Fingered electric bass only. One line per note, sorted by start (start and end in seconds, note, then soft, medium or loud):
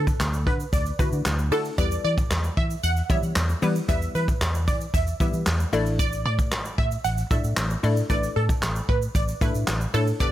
0.00 0.11 D3 loud
0.20 0.47 D2 loud
0.47 0.64 D3 loud
0.73 0.90 D2 loud
0.99 1.08 D3 loud
1.12 1.21 D3 loud
1.25 1.52 D2 loud
1.52 1.69 D3 loud
1.78 1.95 E2 loud
2.04 2.22 E3 loud
2.31 2.48 E2 loud
2.57 2.74 E3 loud
2.83 3.01 E2 loud
3.10 3.18 E3 loud
3.23 3.31 E3 loud
3.36 3.53 E2 loud
3.62 3.79 E3 loud
3.89 4.06 E2 loud
4.15 4.32 E3 loud
4.41 4.69 E2 loud
4.68 4.85 E3 loud
4.94 5.11 E2 loud
5.20 5.29 E3 loud
5.33 5.42 E3 loud
5.47 5.64 E2 loud
5.73 6.26 A1 loud
6.26 6.52 A2 loud
6.52 6.69 A1 loud
6.78 6.95 A2 loud
7.05 7.22 A1 loud
7.31 7.39 A2 loud
7.44 7.53 A2 loud
7.57 7.74 A1 loud
7.83 8.01 A2 loud
8.10 8.27 A1 loud
8.36 8.53 A2 loud
8.62 8.80 A1 loud
8.89 9.06 A2 loud
9.15 9.32 A1 loud
9.41 9.50 A2 loud
9.55 9.63 A2 loud
9.68 9.85 A1 loud
9.94 10.11 A2 loud
10.20 10.32 G1 loud